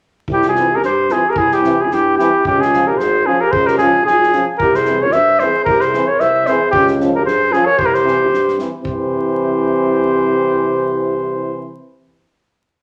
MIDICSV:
0, 0, Header, 1, 7, 480
1, 0, Start_track
1, 0, Tempo, 538117
1, 259, Time_signature, 2, 2, 24, 8
1, 5058, Tempo, 529101
1, 11550, End_track
2, 0, Start_track
2, 0, Title_t, "Flugelhorn"
2, 0, Program_c, 0, 56
2, 294, Note_on_c, 0, 67, 82
2, 401, Note_off_c, 0, 67, 0
2, 431, Note_on_c, 0, 68, 73
2, 675, Note_on_c, 0, 70, 70
2, 688, Note_off_c, 0, 68, 0
2, 753, Note_off_c, 0, 70, 0
2, 758, Note_on_c, 0, 72, 80
2, 998, Note_on_c, 0, 68, 75
2, 1011, Note_off_c, 0, 72, 0
2, 1158, Note_on_c, 0, 70, 70
2, 1171, Note_off_c, 0, 68, 0
2, 1231, Note_on_c, 0, 68, 82
2, 1244, Note_off_c, 0, 70, 0
2, 1367, Note_on_c, 0, 67, 72
2, 1381, Note_off_c, 0, 68, 0
2, 1617, Note_on_c, 0, 68, 70
2, 1630, Note_off_c, 0, 67, 0
2, 1729, Note_on_c, 0, 67, 81
2, 1742, Note_off_c, 0, 68, 0
2, 1938, Note_off_c, 0, 67, 0
2, 1943, Note_on_c, 0, 67, 80
2, 2167, Note_off_c, 0, 67, 0
2, 2205, Note_on_c, 0, 67, 83
2, 2328, Note_on_c, 0, 68, 81
2, 2342, Note_off_c, 0, 67, 0
2, 2564, Note_on_c, 0, 70, 71
2, 2577, Note_off_c, 0, 68, 0
2, 2659, Note_on_c, 0, 72, 90
2, 2672, Note_off_c, 0, 70, 0
2, 2912, Note_on_c, 0, 68, 77
2, 2925, Note_off_c, 0, 72, 0
2, 3041, Note_on_c, 0, 70, 74
2, 3054, Note_off_c, 0, 68, 0
2, 3134, Note_on_c, 0, 72, 100
2, 3147, Note_off_c, 0, 70, 0
2, 3270, Note_on_c, 0, 70, 69
2, 3283, Note_off_c, 0, 72, 0
2, 3366, Note_off_c, 0, 70, 0
2, 3371, Note_on_c, 0, 68, 82
2, 3600, Note_off_c, 0, 68, 0
2, 3621, Note_on_c, 0, 68, 92
2, 3969, Note_off_c, 0, 68, 0
2, 4085, Note_on_c, 0, 70, 82
2, 4242, Note_on_c, 0, 72, 73
2, 4256, Note_off_c, 0, 70, 0
2, 4481, Note_on_c, 0, 73, 70
2, 4495, Note_off_c, 0, 72, 0
2, 4570, Note_on_c, 0, 76, 98
2, 4584, Note_off_c, 0, 73, 0
2, 4813, Note_on_c, 0, 72, 87
2, 4827, Note_off_c, 0, 76, 0
2, 5035, Note_off_c, 0, 72, 0
2, 5040, Note_on_c, 0, 70, 96
2, 5184, Note_on_c, 0, 72, 86
2, 5197, Note_off_c, 0, 70, 0
2, 5426, Note_on_c, 0, 73, 80
2, 5439, Note_off_c, 0, 72, 0
2, 5542, Note_on_c, 0, 76, 97
2, 5555, Note_off_c, 0, 73, 0
2, 5778, Note_on_c, 0, 72, 86
2, 5792, Note_off_c, 0, 76, 0
2, 6000, Note_off_c, 0, 72, 0
2, 6005, Note_on_c, 0, 67, 97
2, 6138, Note_off_c, 0, 67, 0
2, 6400, Note_on_c, 0, 70, 68
2, 6490, Note_off_c, 0, 70, 0
2, 6496, Note_on_c, 0, 72, 81
2, 6740, Note_on_c, 0, 68, 77
2, 6753, Note_off_c, 0, 72, 0
2, 6857, Note_on_c, 0, 73, 88
2, 6871, Note_off_c, 0, 68, 0
2, 6976, Note_on_c, 0, 72, 87
2, 6990, Note_off_c, 0, 73, 0
2, 7042, Note_on_c, 0, 70, 76
2, 7056, Note_off_c, 0, 72, 0
2, 7119, Note_on_c, 0, 72, 87
2, 7132, Note_off_c, 0, 70, 0
2, 7703, Note_off_c, 0, 72, 0
2, 7941, Note_on_c, 0, 72, 68
2, 10548, Note_off_c, 0, 72, 0
2, 11550, End_track
3, 0, Start_track
3, 0, Title_t, "Clarinet"
3, 0, Program_c, 1, 71
3, 286, Note_on_c, 1, 64, 66
3, 397, Note_off_c, 1, 64, 0
3, 415, Note_on_c, 1, 65, 57
3, 651, Note_on_c, 1, 67, 61
3, 664, Note_off_c, 1, 65, 0
3, 749, Note_off_c, 1, 67, 0
3, 767, Note_on_c, 1, 67, 66
3, 980, Note_on_c, 1, 65, 64
3, 994, Note_off_c, 1, 67, 0
3, 1119, Note_on_c, 1, 67, 62
3, 1132, Note_off_c, 1, 65, 0
3, 1218, Note_on_c, 1, 64, 77
3, 1231, Note_off_c, 1, 67, 0
3, 1357, Note_off_c, 1, 64, 0
3, 1357, Note_on_c, 1, 64, 65
3, 1600, Note_on_c, 1, 65, 56
3, 1614, Note_off_c, 1, 64, 0
3, 1700, Note_on_c, 1, 64, 72
3, 1714, Note_off_c, 1, 65, 0
3, 1942, Note_off_c, 1, 64, 0
3, 1954, Note_on_c, 1, 64, 53
3, 2173, Note_off_c, 1, 64, 0
3, 2188, Note_on_c, 1, 61, 63
3, 2314, Note_on_c, 1, 65, 57
3, 2327, Note_off_c, 1, 61, 0
3, 2554, Note_on_c, 1, 67, 62
3, 2567, Note_off_c, 1, 65, 0
3, 2660, Note_on_c, 1, 68, 71
3, 2673, Note_off_c, 1, 67, 0
3, 2891, Note_on_c, 1, 65, 60
3, 2904, Note_off_c, 1, 68, 0
3, 3047, Note_on_c, 1, 67, 66
3, 3060, Note_off_c, 1, 65, 0
3, 3125, Note_on_c, 1, 68, 68
3, 3138, Note_off_c, 1, 67, 0
3, 3263, Note_on_c, 1, 67, 59
3, 3277, Note_off_c, 1, 68, 0
3, 3378, Note_off_c, 1, 67, 0
3, 3383, Note_on_c, 1, 65, 63
3, 3607, Note_off_c, 1, 65, 0
3, 3621, Note_on_c, 1, 65, 59
3, 3968, Note_off_c, 1, 65, 0
3, 4112, Note_on_c, 1, 67, 74
3, 4238, Note_on_c, 1, 68, 67
3, 4252, Note_off_c, 1, 67, 0
3, 4496, Note_on_c, 1, 70, 67
3, 4510, Note_off_c, 1, 68, 0
3, 4599, Note_on_c, 1, 72, 85
3, 4613, Note_off_c, 1, 70, 0
3, 4848, Note_on_c, 1, 68, 75
3, 4861, Note_off_c, 1, 72, 0
3, 5072, Note_off_c, 1, 68, 0
3, 5085, Note_on_c, 1, 67, 72
3, 5220, Note_on_c, 1, 68, 60
3, 5233, Note_off_c, 1, 67, 0
3, 5457, Note_on_c, 1, 70, 73
3, 5471, Note_off_c, 1, 68, 0
3, 5557, Note_on_c, 1, 72, 81
3, 5570, Note_off_c, 1, 70, 0
3, 5806, Note_on_c, 1, 68, 69
3, 5820, Note_off_c, 1, 72, 0
3, 6024, Note_off_c, 1, 68, 0
3, 6030, Note_on_c, 1, 61, 70
3, 6151, Note_off_c, 1, 61, 0
3, 6409, Note_on_c, 1, 67, 58
3, 6495, Note_off_c, 1, 67, 0
3, 6500, Note_on_c, 1, 68, 67
3, 6721, Note_on_c, 1, 65, 70
3, 6735, Note_off_c, 1, 68, 0
3, 6858, Note_on_c, 1, 70, 64
3, 6871, Note_off_c, 1, 65, 0
3, 6968, Note_on_c, 1, 67, 80
3, 6981, Note_off_c, 1, 70, 0
3, 7041, Note_off_c, 1, 67, 0
3, 7041, Note_on_c, 1, 67, 61
3, 7095, Note_off_c, 1, 67, 0
3, 7095, Note_on_c, 1, 67, 78
3, 7691, Note_off_c, 1, 67, 0
3, 7926, Note_on_c, 1, 67, 65
3, 10541, Note_off_c, 1, 67, 0
3, 11550, End_track
4, 0, Start_track
4, 0, Title_t, "French horn"
4, 0, Program_c, 2, 60
4, 489, Note_on_c, 2, 60, 53
4, 587, Note_off_c, 2, 60, 0
4, 971, Note_on_c, 2, 60, 54
4, 1069, Note_off_c, 2, 60, 0
4, 1446, Note_on_c, 2, 60, 66
4, 1546, Note_off_c, 2, 60, 0
4, 1937, Note_on_c, 2, 60, 59
4, 2035, Note_off_c, 2, 60, 0
4, 2424, Note_on_c, 2, 61, 58
4, 2520, Note_off_c, 2, 61, 0
4, 2905, Note_on_c, 2, 61, 59
4, 3001, Note_off_c, 2, 61, 0
4, 3383, Note_on_c, 2, 61, 58
4, 3479, Note_off_c, 2, 61, 0
4, 3853, Note_on_c, 2, 61, 57
4, 3951, Note_off_c, 2, 61, 0
4, 4345, Note_on_c, 2, 60, 51
4, 4440, Note_off_c, 2, 60, 0
4, 4814, Note_on_c, 2, 60, 55
4, 4911, Note_off_c, 2, 60, 0
4, 5300, Note_on_c, 2, 60, 61
4, 5397, Note_off_c, 2, 60, 0
4, 5767, Note_on_c, 2, 60, 72
4, 5867, Note_off_c, 2, 60, 0
4, 6260, Note_on_c, 2, 61, 61
4, 6357, Note_off_c, 2, 61, 0
4, 6721, Note_on_c, 2, 61, 61
4, 6822, Note_off_c, 2, 61, 0
4, 7203, Note_on_c, 2, 60, 52
4, 7303, Note_off_c, 2, 60, 0
4, 7692, Note_on_c, 2, 60, 47
4, 7791, Note_off_c, 2, 60, 0
4, 7929, Note_on_c, 2, 60, 59
4, 10542, Note_off_c, 2, 60, 0
4, 11550, End_track
5, 0, Start_track
5, 0, Title_t, "Euphonium"
5, 0, Program_c, 3, 58
5, 509, Note_on_c, 3, 52, 52
5, 604, Note_off_c, 3, 52, 0
5, 987, Note_on_c, 3, 52, 52
5, 1082, Note_off_c, 3, 52, 0
5, 1468, Note_on_c, 3, 52, 66
5, 1563, Note_off_c, 3, 52, 0
5, 1951, Note_on_c, 3, 52, 69
5, 2045, Note_off_c, 3, 52, 0
5, 2436, Note_on_c, 3, 53, 55
5, 2529, Note_off_c, 3, 53, 0
5, 2916, Note_on_c, 3, 53, 56
5, 3010, Note_off_c, 3, 53, 0
5, 3388, Note_on_c, 3, 53, 59
5, 3483, Note_off_c, 3, 53, 0
5, 3864, Note_on_c, 3, 53, 49
5, 3960, Note_off_c, 3, 53, 0
5, 4333, Note_on_c, 3, 52, 53
5, 4430, Note_off_c, 3, 52, 0
5, 4821, Note_on_c, 3, 52, 59
5, 4916, Note_off_c, 3, 52, 0
5, 5299, Note_on_c, 3, 52, 68
5, 5395, Note_off_c, 3, 52, 0
5, 5793, Note_on_c, 3, 52, 65
5, 5888, Note_off_c, 3, 52, 0
5, 6273, Note_on_c, 3, 53, 59
5, 6368, Note_off_c, 3, 53, 0
5, 6757, Note_on_c, 3, 53, 56
5, 6851, Note_off_c, 3, 53, 0
5, 7208, Note_on_c, 3, 52, 54
5, 7308, Note_off_c, 3, 52, 0
5, 7710, Note_on_c, 3, 52, 47
5, 7805, Note_off_c, 3, 52, 0
5, 7957, Note_on_c, 3, 52, 58
5, 10556, Note_off_c, 3, 52, 0
5, 11550, End_track
6, 0, Start_track
6, 0, Title_t, "Tuba"
6, 0, Program_c, 4, 58
6, 255, Note_on_c, 4, 36, 96
6, 741, Note_on_c, 4, 43, 79
6, 754, Note_off_c, 4, 36, 0
6, 1005, Note_off_c, 4, 43, 0
6, 1227, Note_on_c, 4, 36, 85
6, 1706, Note_on_c, 4, 43, 85
6, 1720, Note_off_c, 4, 36, 0
6, 1970, Note_off_c, 4, 43, 0
6, 2194, Note_on_c, 4, 37, 101
6, 2667, Note_on_c, 4, 32, 86
6, 2680, Note_off_c, 4, 37, 0
6, 2930, Note_off_c, 4, 32, 0
6, 3157, Note_on_c, 4, 37, 94
6, 3634, Note_on_c, 4, 32, 81
6, 3647, Note_off_c, 4, 37, 0
6, 3895, Note_off_c, 4, 32, 0
6, 4108, Note_on_c, 4, 36, 95
6, 4594, Note_on_c, 4, 43, 84
6, 4607, Note_off_c, 4, 36, 0
6, 4852, Note_off_c, 4, 43, 0
6, 5063, Note_on_c, 4, 36, 95
6, 5327, Note_off_c, 4, 36, 0
6, 5545, Note_on_c, 4, 36, 89
6, 5810, Note_off_c, 4, 36, 0
6, 6023, Note_on_c, 4, 37, 105
6, 6503, Note_on_c, 4, 43, 86
6, 6516, Note_off_c, 4, 37, 0
6, 6768, Note_off_c, 4, 43, 0
6, 6970, Note_on_c, 4, 36, 89
6, 7458, Note_on_c, 4, 43, 80
6, 7472, Note_off_c, 4, 36, 0
6, 7724, Note_off_c, 4, 43, 0
6, 7931, Note_on_c, 4, 36, 80
6, 10543, Note_off_c, 4, 36, 0
6, 11550, End_track
7, 0, Start_track
7, 0, Title_t, "Drums"
7, 248, Note_on_c, 9, 36, 64
7, 337, Note_off_c, 9, 36, 0
7, 374, Note_on_c, 9, 38, 27
7, 463, Note_off_c, 9, 38, 0
7, 494, Note_on_c, 9, 38, 25
7, 583, Note_off_c, 9, 38, 0
7, 737, Note_on_c, 9, 38, 24
7, 826, Note_off_c, 9, 38, 0
7, 972, Note_on_c, 9, 38, 23
7, 1061, Note_off_c, 9, 38, 0
7, 1212, Note_on_c, 9, 36, 75
7, 1301, Note_off_c, 9, 36, 0
7, 1351, Note_on_c, 9, 38, 27
7, 1441, Note_off_c, 9, 38, 0
7, 1464, Note_on_c, 9, 38, 25
7, 1553, Note_off_c, 9, 38, 0
7, 1705, Note_on_c, 9, 38, 27
7, 1794, Note_off_c, 9, 38, 0
7, 1956, Note_on_c, 9, 38, 29
7, 2045, Note_off_c, 9, 38, 0
7, 2186, Note_on_c, 9, 36, 74
7, 2275, Note_off_c, 9, 36, 0
7, 2337, Note_on_c, 9, 38, 27
7, 2426, Note_off_c, 9, 38, 0
7, 2436, Note_on_c, 9, 38, 29
7, 2526, Note_off_c, 9, 38, 0
7, 2672, Note_on_c, 9, 38, 30
7, 2762, Note_off_c, 9, 38, 0
7, 3146, Note_on_c, 9, 36, 78
7, 3236, Note_off_c, 9, 36, 0
7, 3277, Note_on_c, 9, 38, 25
7, 3366, Note_off_c, 9, 38, 0
7, 3373, Note_on_c, 9, 38, 27
7, 3462, Note_off_c, 9, 38, 0
7, 3632, Note_on_c, 9, 38, 29
7, 3721, Note_off_c, 9, 38, 0
7, 3773, Note_on_c, 9, 38, 23
7, 3859, Note_off_c, 9, 38, 0
7, 3859, Note_on_c, 9, 38, 25
7, 3948, Note_off_c, 9, 38, 0
7, 4101, Note_on_c, 9, 36, 78
7, 4190, Note_off_c, 9, 36, 0
7, 4231, Note_on_c, 9, 38, 29
7, 4320, Note_off_c, 9, 38, 0
7, 4328, Note_on_c, 9, 38, 28
7, 4417, Note_off_c, 9, 38, 0
7, 4566, Note_on_c, 9, 38, 30
7, 4655, Note_off_c, 9, 38, 0
7, 4807, Note_on_c, 9, 38, 24
7, 4896, Note_off_c, 9, 38, 0
7, 5051, Note_on_c, 9, 36, 79
7, 5142, Note_off_c, 9, 36, 0
7, 5179, Note_on_c, 9, 38, 25
7, 5270, Note_off_c, 9, 38, 0
7, 5297, Note_on_c, 9, 38, 28
7, 5388, Note_off_c, 9, 38, 0
7, 5537, Note_on_c, 9, 38, 23
7, 5628, Note_off_c, 9, 38, 0
7, 5772, Note_on_c, 9, 38, 27
7, 5863, Note_off_c, 9, 38, 0
7, 6019, Note_on_c, 9, 36, 77
7, 6110, Note_off_c, 9, 36, 0
7, 6148, Note_on_c, 9, 38, 27
7, 6238, Note_off_c, 9, 38, 0
7, 6267, Note_on_c, 9, 38, 28
7, 6358, Note_off_c, 9, 38, 0
7, 6514, Note_on_c, 9, 38, 25
7, 6605, Note_off_c, 9, 38, 0
7, 6746, Note_on_c, 9, 38, 20
7, 6837, Note_off_c, 9, 38, 0
7, 6978, Note_on_c, 9, 36, 72
7, 7069, Note_off_c, 9, 36, 0
7, 7121, Note_on_c, 9, 38, 24
7, 7212, Note_off_c, 9, 38, 0
7, 7240, Note_on_c, 9, 38, 24
7, 7331, Note_off_c, 9, 38, 0
7, 7476, Note_on_c, 9, 38, 27
7, 7567, Note_off_c, 9, 38, 0
7, 7607, Note_on_c, 9, 38, 22
7, 7698, Note_off_c, 9, 38, 0
7, 7704, Note_on_c, 9, 38, 27
7, 7794, Note_off_c, 9, 38, 0
7, 7942, Note_on_c, 9, 36, 71
7, 8033, Note_off_c, 9, 36, 0
7, 11550, End_track
0, 0, End_of_file